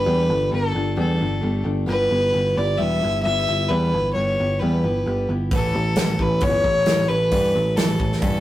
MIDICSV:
0, 0, Header, 1, 5, 480
1, 0, Start_track
1, 0, Tempo, 452830
1, 76, Time_signature, 4, 2, 24, 8
1, 8905, End_track
2, 0, Start_track
2, 0, Title_t, "Fiddle"
2, 0, Program_c, 0, 110
2, 0, Note_on_c, 0, 71, 92
2, 563, Note_off_c, 0, 71, 0
2, 572, Note_on_c, 0, 69, 77
2, 1012, Note_off_c, 0, 69, 0
2, 1052, Note_on_c, 0, 69, 74
2, 1724, Note_off_c, 0, 69, 0
2, 2001, Note_on_c, 0, 71, 104
2, 2728, Note_on_c, 0, 74, 88
2, 2743, Note_off_c, 0, 71, 0
2, 2944, Note_on_c, 0, 76, 102
2, 2960, Note_off_c, 0, 74, 0
2, 3418, Note_off_c, 0, 76, 0
2, 3425, Note_on_c, 0, 76, 107
2, 3913, Note_on_c, 0, 71, 96
2, 3929, Note_off_c, 0, 76, 0
2, 4378, Note_off_c, 0, 71, 0
2, 4384, Note_on_c, 0, 73, 82
2, 4871, Note_on_c, 0, 71, 70
2, 4887, Note_off_c, 0, 73, 0
2, 5597, Note_off_c, 0, 71, 0
2, 5876, Note_on_c, 0, 69, 97
2, 6591, Note_on_c, 0, 71, 88
2, 6607, Note_off_c, 0, 69, 0
2, 6810, Note_on_c, 0, 73, 108
2, 6826, Note_off_c, 0, 71, 0
2, 7510, Note_on_c, 0, 71, 92
2, 7526, Note_off_c, 0, 73, 0
2, 8237, Note_on_c, 0, 69, 77
2, 8253, Note_off_c, 0, 71, 0
2, 8698, Note_off_c, 0, 69, 0
2, 8704, Note_on_c, 0, 69, 76
2, 8905, Note_off_c, 0, 69, 0
2, 8905, End_track
3, 0, Start_track
3, 0, Title_t, "Steel-string acoustic guitar"
3, 0, Program_c, 1, 25
3, 55, Note_on_c, 1, 55, 69
3, 63, Note_on_c, 1, 57, 74
3, 71, Note_on_c, 1, 62, 80
3, 71, Note_on_c, 1, 67, 89
3, 285, Note_off_c, 1, 67, 0
3, 292, Note_off_c, 1, 62, 0
3, 298, Note_on_c, 1, 67, 51
3, 301, Note_off_c, 1, 57, 0
3, 305, Note_on_c, 1, 62, 47
3, 306, Note_off_c, 1, 55, 0
3, 314, Note_on_c, 1, 57, 41
3, 528, Note_on_c, 1, 55, 58
3, 530, Note_off_c, 1, 57, 0
3, 532, Note_off_c, 1, 62, 0
3, 543, Note_on_c, 1, 57, 58
3, 545, Note_on_c, 1, 62, 64
3, 548, Note_off_c, 1, 67, 0
3, 560, Note_on_c, 1, 67, 60
3, 770, Note_off_c, 1, 67, 0
3, 775, Note_off_c, 1, 62, 0
3, 783, Note_off_c, 1, 55, 0
3, 783, Note_on_c, 1, 67, 49
3, 787, Note_on_c, 1, 62, 50
3, 791, Note_off_c, 1, 57, 0
3, 807, Note_on_c, 1, 57, 39
3, 1014, Note_off_c, 1, 62, 0
3, 1015, Note_off_c, 1, 57, 0
3, 1015, Note_off_c, 1, 67, 0
3, 1017, Note_on_c, 1, 55, 65
3, 1027, Note_on_c, 1, 62, 81
3, 1027, Note_on_c, 1, 67, 77
3, 1028, Note_on_c, 1, 57, 74
3, 1232, Note_off_c, 1, 67, 0
3, 1245, Note_on_c, 1, 67, 54
3, 1246, Note_off_c, 1, 62, 0
3, 1253, Note_off_c, 1, 57, 0
3, 1259, Note_on_c, 1, 62, 49
3, 1266, Note_on_c, 1, 57, 40
3, 1268, Note_off_c, 1, 55, 0
3, 1483, Note_off_c, 1, 57, 0
3, 1483, Note_off_c, 1, 62, 0
3, 1487, Note_on_c, 1, 55, 54
3, 1495, Note_on_c, 1, 62, 63
3, 1496, Note_on_c, 1, 57, 63
3, 1497, Note_off_c, 1, 67, 0
3, 1509, Note_on_c, 1, 67, 70
3, 1717, Note_off_c, 1, 67, 0
3, 1721, Note_off_c, 1, 62, 0
3, 1729, Note_on_c, 1, 67, 59
3, 1732, Note_off_c, 1, 57, 0
3, 1734, Note_on_c, 1, 62, 51
3, 1743, Note_off_c, 1, 55, 0
3, 1745, Note_on_c, 1, 57, 48
3, 1969, Note_off_c, 1, 57, 0
3, 1973, Note_on_c, 1, 55, 72
3, 1973, Note_on_c, 1, 59, 76
3, 1977, Note_off_c, 1, 67, 0
3, 1979, Note_off_c, 1, 62, 0
3, 1983, Note_on_c, 1, 64, 87
3, 1990, Note_on_c, 1, 67, 81
3, 2209, Note_off_c, 1, 67, 0
3, 2222, Note_on_c, 1, 67, 59
3, 2224, Note_off_c, 1, 64, 0
3, 2227, Note_off_c, 1, 55, 0
3, 2227, Note_off_c, 1, 59, 0
3, 2237, Note_on_c, 1, 64, 50
3, 2244, Note_on_c, 1, 59, 40
3, 2451, Note_off_c, 1, 59, 0
3, 2457, Note_on_c, 1, 55, 52
3, 2459, Note_off_c, 1, 64, 0
3, 2463, Note_on_c, 1, 59, 59
3, 2464, Note_off_c, 1, 67, 0
3, 2472, Note_on_c, 1, 64, 59
3, 2477, Note_on_c, 1, 67, 61
3, 2682, Note_off_c, 1, 67, 0
3, 2694, Note_off_c, 1, 64, 0
3, 2695, Note_on_c, 1, 67, 51
3, 2704, Note_off_c, 1, 59, 0
3, 2707, Note_on_c, 1, 64, 48
3, 2709, Note_off_c, 1, 55, 0
3, 2716, Note_on_c, 1, 59, 45
3, 2930, Note_off_c, 1, 59, 0
3, 2936, Note_on_c, 1, 55, 77
3, 2937, Note_off_c, 1, 64, 0
3, 2943, Note_on_c, 1, 59, 71
3, 2948, Note_off_c, 1, 67, 0
3, 2950, Note_on_c, 1, 64, 74
3, 2959, Note_on_c, 1, 67, 78
3, 3174, Note_off_c, 1, 67, 0
3, 3178, Note_off_c, 1, 64, 0
3, 3186, Note_on_c, 1, 67, 53
3, 3189, Note_off_c, 1, 55, 0
3, 3190, Note_off_c, 1, 59, 0
3, 3191, Note_on_c, 1, 64, 43
3, 3202, Note_on_c, 1, 59, 39
3, 3407, Note_off_c, 1, 59, 0
3, 3411, Note_off_c, 1, 64, 0
3, 3412, Note_on_c, 1, 55, 57
3, 3417, Note_off_c, 1, 67, 0
3, 3420, Note_on_c, 1, 59, 58
3, 3423, Note_on_c, 1, 64, 59
3, 3430, Note_on_c, 1, 67, 61
3, 3654, Note_off_c, 1, 67, 0
3, 3667, Note_off_c, 1, 55, 0
3, 3667, Note_on_c, 1, 67, 50
3, 3671, Note_off_c, 1, 59, 0
3, 3673, Note_off_c, 1, 64, 0
3, 3686, Note_on_c, 1, 64, 43
3, 3690, Note_on_c, 1, 59, 41
3, 3909, Note_off_c, 1, 64, 0
3, 3914, Note_on_c, 1, 55, 75
3, 3915, Note_off_c, 1, 59, 0
3, 3915, Note_off_c, 1, 67, 0
3, 3921, Note_on_c, 1, 64, 88
3, 3928, Note_on_c, 1, 59, 75
3, 3930, Note_on_c, 1, 67, 81
3, 4140, Note_off_c, 1, 67, 0
3, 4150, Note_off_c, 1, 64, 0
3, 4152, Note_off_c, 1, 59, 0
3, 4153, Note_on_c, 1, 67, 51
3, 4158, Note_off_c, 1, 55, 0
3, 4163, Note_on_c, 1, 64, 47
3, 4165, Note_on_c, 1, 59, 41
3, 4388, Note_off_c, 1, 59, 0
3, 4393, Note_on_c, 1, 55, 51
3, 4395, Note_off_c, 1, 64, 0
3, 4397, Note_off_c, 1, 67, 0
3, 4401, Note_on_c, 1, 59, 59
3, 4408, Note_on_c, 1, 64, 58
3, 4419, Note_on_c, 1, 67, 61
3, 4629, Note_off_c, 1, 67, 0
3, 4638, Note_off_c, 1, 55, 0
3, 4640, Note_off_c, 1, 64, 0
3, 4642, Note_off_c, 1, 59, 0
3, 4642, Note_on_c, 1, 67, 52
3, 4653, Note_on_c, 1, 64, 46
3, 4657, Note_on_c, 1, 59, 42
3, 4873, Note_off_c, 1, 59, 0
3, 4878, Note_off_c, 1, 64, 0
3, 4880, Note_on_c, 1, 55, 75
3, 4882, Note_off_c, 1, 67, 0
3, 4886, Note_on_c, 1, 59, 74
3, 4891, Note_on_c, 1, 64, 73
3, 4895, Note_on_c, 1, 67, 71
3, 5108, Note_off_c, 1, 67, 0
3, 5111, Note_off_c, 1, 64, 0
3, 5120, Note_on_c, 1, 67, 49
3, 5121, Note_off_c, 1, 55, 0
3, 5124, Note_off_c, 1, 59, 0
3, 5124, Note_on_c, 1, 64, 43
3, 5139, Note_on_c, 1, 59, 41
3, 5355, Note_off_c, 1, 59, 0
3, 5360, Note_off_c, 1, 64, 0
3, 5361, Note_off_c, 1, 67, 0
3, 5361, Note_on_c, 1, 55, 57
3, 5368, Note_on_c, 1, 59, 64
3, 5373, Note_on_c, 1, 64, 55
3, 5380, Note_on_c, 1, 67, 61
3, 5589, Note_off_c, 1, 67, 0
3, 5596, Note_off_c, 1, 64, 0
3, 5601, Note_off_c, 1, 55, 0
3, 5601, Note_on_c, 1, 67, 52
3, 5602, Note_off_c, 1, 59, 0
3, 5608, Note_on_c, 1, 64, 52
3, 5615, Note_on_c, 1, 59, 50
3, 5834, Note_off_c, 1, 59, 0
3, 5842, Note_off_c, 1, 67, 0
3, 5845, Note_off_c, 1, 64, 0
3, 5847, Note_on_c, 1, 45, 66
3, 5847, Note_on_c, 1, 52, 79
3, 5847, Note_on_c, 1, 59, 87
3, 5855, Note_on_c, 1, 61, 82
3, 5858, Note_on_c, 1, 64, 88
3, 6068, Note_off_c, 1, 64, 0
3, 6078, Note_off_c, 1, 61, 0
3, 6081, Note_on_c, 1, 64, 46
3, 6084, Note_off_c, 1, 45, 0
3, 6085, Note_off_c, 1, 52, 0
3, 6085, Note_off_c, 1, 59, 0
3, 6091, Note_on_c, 1, 61, 45
3, 6103, Note_on_c, 1, 59, 36
3, 6312, Note_off_c, 1, 59, 0
3, 6318, Note_on_c, 1, 52, 49
3, 6321, Note_off_c, 1, 64, 0
3, 6325, Note_on_c, 1, 59, 63
3, 6327, Note_off_c, 1, 61, 0
3, 6338, Note_on_c, 1, 61, 57
3, 6344, Note_on_c, 1, 64, 59
3, 6547, Note_off_c, 1, 64, 0
3, 6559, Note_off_c, 1, 61, 0
3, 6560, Note_off_c, 1, 52, 0
3, 6560, Note_on_c, 1, 64, 51
3, 6563, Note_off_c, 1, 59, 0
3, 6572, Note_on_c, 1, 61, 44
3, 6586, Note_on_c, 1, 59, 42
3, 6780, Note_off_c, 1, 59, 0
3, 6784, Note_on_c, 1, 45, 69
3, 6785, Note_off_c, 1, 61, 0
3, 6789, Note_off_c, 1, 64, 0
3, 6790, Note_on_c, 1, 52, 77
3, 6793, Note_on_c, 1, 59, 65
3, 6797, Note_on_c, 1, 61, 78
3, 6802, Note_on_c, 1, 64, 79
3, 7019, Note_off_c, 1, 64, 0
3, 7024, Note_off_c, 1, 61, 0
3, 7031, Note_on_c, 1, 64, 52
3, 7032, Note_off_c, 1, 45, 0
3, 7032, Note_off_c, 1, 59, 0
3, 7035, Note_off_c, 1, 52, 0
3, 7037, Note_on_c, 1, 61, 46
3, 7044, Note_on_c, 1, 59, 42
3, 7274, Note_off_c, 1, 59, 0
3, 7276, Note_off_c, 1, 64, 0
3, 7277, Note_off_c, 1, 61, 0
3, 7277, Note_on_c, 1, 52, 55
3, 7286, Note_on_c, 1, 59, 58
3, 7289, Note_on_c, 1, 61, 59
3, 7292, Note_on_c, 1, 64, 63
3, 7497, Note_off_c, 1, 64, 0
3, 7510, Note_off_c, 1, 61, 0
3, 7510, Note_on_c, 1, 64, 53
3, 7519, Note_off_c, 1, 52, 0
3, 7523, Note_off_c, 1, 59, 0
3, 7523, Note_on_c, 1, 61, 50
3, 7535, Note_on_c, 1, 59, 42
3, 7750, Note_off_c, 1, 59, 0
3, 7754, Note_off_c, 1, 61, 0
3, 7754, Note_on_c, 1, 45, 77
3, 7755, Note_off_c, 1, 64, 0
3, 7760, Note_on_c, 1, 52, 80
3, 7763, Note_on_c, 1, 59, 84
3, 7767, Note_on_c, 1, 61, 79
3, 7769, Note_on_c, 1, 64, 84
3, 7979, Note_off_c, 1, 64, 0
3, 7991, Note_off_c, 1, 61, 0
3, 7991, Note_on_c, 1, 64, 50
3, 7997, Note_off_c, 1, 45, 0
3, 7998, Note_off_c, 1, 59, 0
3, 8000, Note_off_c, 1, 52, 0
3, 8004, Note_on_c, 1, 61, 42
3, 8011, Note_on_c, 1, 59, 36
3, 8209, Note_off_c, 1, 59, 0
3, 8215, Note_on_c, 1, 52, 57
3, 8222, Note_on_c, 1, 59, 62
3, 8223, Note_off_c, 1, 61, 0
3, 8227, Note_off_c, 1, 64, 0
3, 8236, Note_on_c, 1, 61, 64
3, 8240, Note_on_c, 1, 64, 61
3, 8443, Note_off_c, 1, 64, 0
3, 8456, Note_off_c, 1, 61, 0
3, 8456, Note_on_c, 1, 64, 50
3, 8463, Note_off_c, 1, 59, 0
3, 8467, Note_off_c, 1, 52, 0
3, 8469, Note_on_c, 1, 61, 42
3, 8476, Note_on_c, 1, 59, 43
3, 8699, Note_off_c, 1, 59, 0
3, 8702, Note_on_c, 1, 45, 68
3, 8706, Note_on_c, 1, 52, 76
3, 8707, Note_off_c, 1, 64, 0
3, 8708, Note_off_c, 1, 61, 0
3, 8711, Note_on_c, 1, 59, 78
3, 8719, Note_on_c, 1, 64, 90
3, 8721, Note_on_c, 1, 61, 80
3, 8905, Note_off_c, 1, 45, 0
3, 8905, Note_off_c, 1, 52, 0
3, 8905, Note_off_c, 1, 59, 0
3, 8905, Note_off_c, 1, 61, 0
3, 8905, Note_off_c, 1, 64, 0
3, 8905, End_track
4, 0, Start_track
4, 0, Title_t, "Picked electric bass"
4, 0, Program_c, 2, 34
4, 68, Note_on_c, 2, 40, 84
4, 293, Note_off_c, 2, 40, 0
4, 310, Note_on_c, 2, 31, 94
4, 534, Note_off_c, 2, 31, 0
4, 555, Note_on_c, 2, 31, 80
4, 778, Note_off_c, 2, 31, 0
4, 796, Note_on_c, 2, 31, 79
4, 1018, Note_off_c, 2, 31, 0
4, 1033, Note_on_c, 2, 40, 84
4, 1257, Note_off_c, 2, 40, 0
4, 1283, Note_on_c, 2, 31, 81
4, 1502, Note_off_c, 2, 31, 0
4, 1517, Note_on_c, 2, 31, 89
4, 1739, Note_off_c, 2, 31, 0
4, 1749, Note_on_c, 2, 31, 78
4, 1975, Note_off_c, 2, 31, 0
4, 1989, Note_on_c, 2, 31, 90
4, 2215, Note_off_c, 2, 31, 0
4, 2235, Note_on_c, 2, 31, 85
4, 2459, Note_off_c, 2, 31, 0
4, 2487, Note_on_c, 2, 31, 75
4, 2705, Note_off_c, 2, 31, 0
4, 2728, Note_on_c, 2, 31, 82
4, 2946, Note_off_c, 2, 31, 0
4, 2969, Note_on_c, 2, 28, 84
4, 3186, Note_off_c, 2, 28, 0
4, 3216, Note_on_c, 2, 31, 87
4, 3430, Note_off_c, 2, 31, 0
4, 3453, Note_on_c, 2, 31, 94
4, 3669, Note_off_c, 2, 31, 0
4, 3699, Note_on_c, 2, 31, 75
4, 3912, Note_off_c, 2, 31, 0
4, 3929, Note_on_c, 2, 40, 89
4, 4147, Note_off_c, 2, 40, 0
4, 4175, Note_on_c, 2, 31, 87
4, 4390, Note_off_c, 2, 31, 0
4, 4407, Note_on_c, 2, 31, 78
4, 4626, Note_off_c, 2, 31, 0
4, 4663, Note_on_c, 2, 31, 78
4, 4874, Note_off_c, 2, 31, 0
4, 4905, Note_on_c, 2, 40, 78
4, 5115, Note_off_c, 2, 40, 0
4, 5134, Note_on_c, 2, 31, 80
4, 5350, Note_off_c, 2, 31, 0
4, 5367, Note_on_c, 2, 31, 85
4, 5586, Note_off_c, 2, 31, 0
4, 5606, Note_on_c, 2, 31, 81
4, 5847, Note_off_c, 2, 31, 0
4, 5847, Note_on_c, 2, 33, 88
4, 6065, Note_off_c, 2, 33, 0
4, 6088, Note_on_c, 2, 33, 83
4, 6306, Note_off_c, 2, 33, 0
4, 6333, Note_on_c, 2, 33, 80
4, 6549, Note_off_c, 2, 33, 0
4, 6570, Note_on_c, 2, 33, 78
4, 6787, Note_off_c, 2, 33, 0
4, 6802, Note_on_c, 2, 31, 83
4, 7023, Note_off_c, 2, 31, 0
4, 7044, Note_on_c, 2, 33, 80
4, 7263, Note_off_c, 2, 33, 0
4, 7277, Note_on_c, 2, 33, 88
4, 7499, Note_off_c, 2, 33, 0
4, 7519, Note_on_c, 2, 33, 82
4, 7740, Note_off_c, 2, 33, 0
4, 7757, Note_on_c, 2, 43, 84
4, 7979, Note_off_c, 2, 43, 0
4, 8009, Note_on_c, 2, 33, 87
4, 8225, Note_off_c, 2, 33, 0
4, 8252, Note_on_c, 2, 33, 75
4, 8467, Note_off_c, 2, 33, 0
4, 8474, Note_on_c, 2, 33, 77
4, 8697, Note_off_c, 2, 33, 0
4, 8713, Note_on_c, 2, 43, 86
4, 8905, Note_off_c, 2, 43, 0
4, 8905, End_track
5, 0, Start_track
5, 0, Title_t, "Drums"
5, 5843, Note_on_c, 9, 46, 43
5, 5844, Note_on_c, 9, 36, 101
5, 5949, Note_off_c, 9, 46, 0
5, 5950, Note_off_c, 9, 36, 0
5, 6317, Note_on_c, 9, 46, 47
5, 6325, Note_on_c, 9, 38, 101
5, 6423, Note_off_c, 9, 46, 0
5, 6431, Note_off_c, 9, 38, 0
5, 6562, Note_on_c, 9, 36, 79
5, 6668, Note_off_c, 9, 36, 0
5, 6792, Note_on_c, 9, 46, 45
5, 6801, Note_on_c, 9, 36, 103
5, 6898, Note_off_c, 9, 46, 0
5, 6907, Note_off_c, 9, 36, 0
5, 7041, Note_on_c, 9, 36, 76
5, 7147, Note_off_c, 9, 36, 0
5, 7271, Note_on_c, 9, 46, 49
5, 7279, Note_on_c, 9, 38, 102
5, 7377, Note_off_c, 9, 46, 0
5, 7385, Note_off_c, 9, 38, 0
5, 7755, Note_on_c, 9, 46, 50
5, 7759, Note_on_c, 9, 36, 89
5, 7861, Note_off_c, 9, 46, 0
5, 7865, Note_off_c, 9, 36, 0
5, 8237, Note_on_c, 9, 46, 49
5, 8245, Note_on_c, 9, 38, 102
5, 8343, Note_off_c, 9, 46, 0
5, 8351, Note_off_c, 9, 38, 0
5, 8478, Note_on_c, 9, 36, 84
5, 8584, Note_off_c, 9, 36, 0
5, 8609, Note_on_c, 9, 38, 33
5, 8712, Note_on_c, 9, 46, 46
5, 8715, Note_off_c, 9, 38, 0
5, 8716, Note_on_c, 9, 36, 94
5, 8818, Note_off_c, 9, 46, 0
5, 8822, Note_off_c, 9, 36, 0
5, 8905, End_track
0, 0, End_of_file